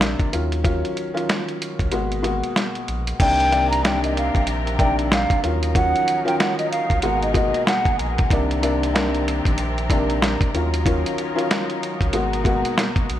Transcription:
Already playing: A#1 C3 D#3 A#3 D4
0.01 snare, closed hi-hat
0.20 kick, closed hi-hat
0.32 D#2 D#3 F#3 C#4 F4, closed hi-hat
0.52 closed hi-hat
0.64 D#3 F#3 C#4 F4, kick, closed hi-hat
0.85 closed hi-hat
0.97 closed hi-hat
1.14 D#3 F#3 C#4 F4, closed hi-hat
1.29 snare, closed hi-hat
1.49 closed hi-hat
1.62 closed hi-hat
1.79 C#2, kick, closed hi-hat
1.92 G#1 B2 G#3 A#3 F#4, closed hi-hat
2.12 closed hi-hat
2.23 B2 G#3 A#3 F#4, closed hi-hat
2.44 closed hi-hat
2.56 snare, closed hi-hat
2.75 closed hi-hat
2.88 A#1, closed hi-hat
3.07 closed hi-hat
3.20 C2 C3 D#3 A#3 C4 D4 G4 A#4 G5, kick, closed hi-hat, crash
3.40 closed hi-hat
3.51 C3 D#3 A#3 D4, closed hi-hat
3.70 A#5, closed hi-hat
3.83 C3 D#3 A#3 D4 G5, snare, closed hi-hat
4.04 D#5, closed hi-hat
4.17 F5, closed hi-hat
4.35 A#1, kick, closed hi-hat
4.47 closed hi-hat
4.67 closed hi-hat
4.78 C3 D#3 A#3 D4 G5, kick, closed hi-hat
4.99 closed hi-hat
5.11 F5, snare, closed hi-hat
5.30 kick, closed hi-hat
5.43 D#2 D#3 F#3 C#4 D#4 F4 A#4, closed hi-hat
5.63 closed hi-hat
5.75 D#3 F3 F#3 C#4 F#5, kick, closed hi-hat
5.96 closed hi-hat
6.08 closed hi-hat
6.25 D#3 F#3 C#4 F4 G5, closed hi-hat
6.40 F#5, snare, closed hi-hat
6.59 D#5, closed hi-hat
6.71 F5, closed hi-hat
6.90 C#2, kick, closed hi-hat
7.02 G#1 B2 G#3 A#3 F#4 G#4 F#5, closed hi-hat
7.23 D#5, closed hi-hat
7.34 B2 G#3 A#3 F#4 D#5, kick, closed hi-hat
7.54 closed hi-hat
7.67 F#5, snare, closed hi-hat
7.85 kick, closed hi-hat
7.99 A#1, closed hi-hat
8.18 kick, closed hi-hat
8.30 C2 C3 D#3 A#3 C4 D4 G4 A#4, kick, closed hi-hat
8.51 closed hi-hat
8.62 C3 D#3 A#3 D4, closed hi-hat
8.83 closed hi-hat
8.94 C3 D#3 A#3 D4, snare, closed hi-hat
9.15 closed hi-hat
9.28 closed hi-hat
9.45 A#1, kick, closed hi-hat
9.58 closed hi-hat
9.78 closed hi-hat
9.90 C3 D#3 A#3 D4, kick, closed hi-hat
10.10 closed hi-hat
10.22 snare, closed hi-hat
10.41 kick, closed hi-hat
10.54 D#2 D#3 F#3 C#4 D#4 F4, closed hi-hat
10.74 closed hi-hat
10.85 D#3 F#3 C#4 F4, kick, closed hi-hat
11.06 closed hi-hat
11.18 closed hi-hat
11.35 D#3 F#3 C#4 F4, closed hi-hat
11.51 snare, closed hi-hat
11.70 closed hi-hat
11.83 closed hi-hat
12.01 C#2, kick, closed hi-hat
12.12 G#1 B2 G#3 A#3 F#4, closed hi-hat
12.33 closed hi-hat
12.44 B2 G#3 A#3 F#4, kick, closed hi-hat
12.65 closed hi-hat
12.78 snare, closed hi-hat
12.96 kick, closed hi-hat
13.09 A#1, closed hi-hat

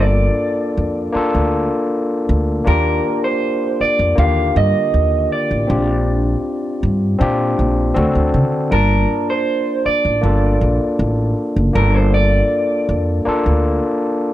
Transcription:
Already playing: G1 A#3 D4 F4 A4
0.00 D5
0.77 F2
1.12 A#3 D4 F4, muted upright bass stroke
1.17 A4
1.35 D2
2.29 D2
2.64 D#2 A#3 D4 F4 G4 A#4
3.24 C5
3.80 D5, muted upright bass stroke
3.99 F2
4.15 D#2 D3 A#3 F4 G4 F5
4.56 G2 D#5
4.94 D#2
5.32 D5
5.51 A1
5.67 A#1 C4 D4 F4 G4
6.83 G2
7.19 A#2 C4 D4 F4 G4
7.59 A#1
7.95 D2 C4 D4 F#4 A4
8.15 D2
8.34 D3
8.70 G1 A#3 D4 F4 A#4 A5
9.30 C5
9.86 D5, muted upright bass stroke
10.05 A1
10.21 G1 A#3 D4 F4 A4
10.61 A#1
10.99 A1
11.56 F#1
11.73 G1 A#3 D4 F4 A4 A#4
11.95 C5
12.14 D5
12.89 F2
13.25 A#3 D4 F4 A4, muted upright bass stroke
13.46 D2

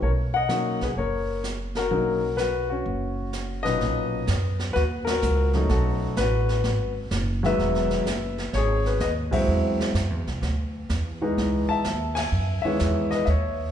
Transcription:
0.02 B1 A#4 C#5, brush sweep
0.34 D#5 F#5
0.49 F#3 A#3 C#4 D#4, snare, hi-hat pedal
0.81 C2 G#4 B4, snare
0.96 F#1 A#4 C#5, brush sweep
1.44 snare, hi-hat pedal
1.75 F#4 A#4, snare
1.91 B1 F#3 A#3 C#4 D#4, brush sweep
2.37 F#4 B4, snare, hi-hat pedal
2.70 C#4 F#4
2.85 F#1, brush sweep
3.33 snare, hi-hat pedal
3.63 A#2 B2 F#3 C#4 D#4 B4 D#5, snare
3.81 B1, brush sweep, snare
4.27 F#2, snare, hi-hat pedal
4.59 snare
4.73 D#2 F#4 B4, brush sweep, snare
5.05 F#4 A#4, snare, ride
5.22 C#2, hi-hat pedal
5.53 F#3 A3 C#4 D#4, snare
5.69 B1 F#4 A4, brush sweep, snare
6.17 A1 F#4 B4, snare, hi-hat pedal
6.49 snare
6.64 G#1, brush sweep, snare
7.11 F#1, snare, hi-hat pedal
7.43 D#3 F#3 G#3 B3 B4 E5, snare
7.58 E1, brush sweep, snare
7.75 snare
7.90 snare
8.06 F#1, snare, hi-hat pedal
8.38 snare
8.53 G#1 C#5, brush sweep, snare
8.57 G#4
8.86 G#4 B4, snare
9.00 D#2 B4 D#5, snare, hi-hat pedal
9.31 F#3 G#3 C4 E4 C5 E5, kick, ride
9.48 E2, brush sweep
9.80 snare
9.94 F#2, snare, hi-hat pedal
10.10 E2
10.27 C2, snare
10.42 D2, brush sweep, snare
10.89 E2, snare, hi-hat pedal
11.21 E3 G#3 B3 D#4
11.37 C#2, brush sweep, snare
11.69 E5 A5, muted upright bass stroke
11.84 D#2, snare, hi-hat pedal
12.15 E5 G#5, snare, ride
12.32 F#2, brush sweep
12.62 E3 G#3 B3 C#5 E5, muted upright bass stroke
12.66 D#3
12.79 E2, snare, hi-hat pedal
13.11 D#5, snare
13.15 B4
13.25 D#2 E5, brush sweep, snare
13.30 C#5

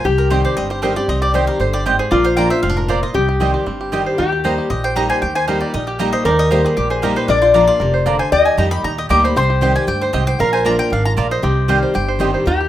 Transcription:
0.04 C2 C3 G4
0.18 A#4
0.30 D#3 G3 C4 G4 C5 D#5 G5
0.45 C5 D5
0.57 G1 G2 C4 D#5
0.70 G4 C5
0.82 D#3 G3 C4 G4 A#4 C5 D#5 G5
0.96 C4 G4 D5
1.08 C2 C3 C4 D#5
1.22 G4 D5
1.33 D#3 G3 C4 G4 C5 D#5 G5
1.47 G4 A#4
1.60 G1 D3 C5
1.73 G4 D5
1.86 G#2 C4 G4 C5 D#5 G5
1.99 G#4 C5
2.11 A#1 A#2 F4 A#4 D5
2.25 C5 F5
2.37 F3 A#3 D4 F4 D5 G5 A#5
2.50 D4 F4 C5 E5
2.63 F1 G#2 C4 F5
2.69 D4
2.77 A#4
2.88 A#2 A#3 F4 C5 D5 A#5
3.03 F4 D#5
3.14 C2 C3 G4
3.29 G4
3.40 D#3 G3 C4 G4 D#5 G5
3.54 G4
3.66 G1 G2 C4
3.81 G4
3.92 D#3 G3 C4 G4 D#5 G5
4.06 C5
4.18 D#2 D#3 D#4 G4
4.32 G4
4.44 G3 A#3 D#4 G4 C5 D#5 A#5
4.58 G4
4.70 A#1 A#2 G4 D#5
4.84 C5 G5
4.96 G3 A#3 D#4 G4 D#5 A#5
5.10 C5 G#5
5.22 D#2 D#3 G4 G5
5.35 C5 G#5
5.47 G3 A#3 D#4 G4 D#5 F5 A#5
5.57 F4 D5
5.61 G4
5.74 A#1 A#2 D#4 D#5
5.87 G4
5.99 G3 A#3 D#4 G4 A#4 D#5 A#5
6.13 C5 D#5
6.25 D#2 D#3 C#4 A#4 D5
6.30 D#4
6.39 G4 D#5
6.50 G3 A#3 D#4 G4 C5 D#5 A#5
6.64 G4 G#4
6.77 A#1 A#2 G4
6.90 G#4 C5
7.02 G3 A#3 D#4 G4 A#4 D#5 A#5
7.16 B4 C5
7.28 A#1 A#2 D4 A#4 D5
7.42 F4 C5
7.54 F3 A#3 D4 F4 D5 A#5
7.67 F4 D5
7.80 F1 C3 A#4
7.94 C5
8.06 D3 A#3 D4 F4 D5 A#5
8.19 C5 G#5
8.32 D#2 D#3 G4 D#5 G5
8.45 G#5
8.57 F2 G3 A#3 D#4 G4 D#5 A#5
8.71 G4 B5
8.84 D#2 A#2 D#4 A#5
8.98 G4 D#5
9.09 D2 G3 A#3 D#4 G4 D#5 A#5 D6
9.24 C5 B5
9.36 C2 C3 C4 C5 C6
9.50 G4
9.61 D#3 G3 C4 G4 C5 D#5 G5
9.76 G4 G#5
9.87 D2 G2 G4 G5
10.01 C5
10.13 C2 G#2 C4 G4 D#5 G5
10.27 C5 G5
10.39 A#1 A#2 A#4 F5
10.53 C5 G#5
10.65 F3 A#3 D4 F4 D5 A#5
10.79 A#4 G5
10.90 G#1 G#2 D4 F5
11.05 F4 A#5
11.17 A#1 A#2 A#3 F4 A#4 D5 A#5
11.31 C5 D#5
11.42 C2 C3 C4 G4
11.68 D#3 G3 C4 G4 D#5 F5 G5
11.83 C5
11.94 G1 G2 G4 G5
12.08 C5
12.19 D#3 G3 C4 G4 D#5 G5
12.34 C5
12.46 D#2 D#3 D#4 G4
12.61 G4

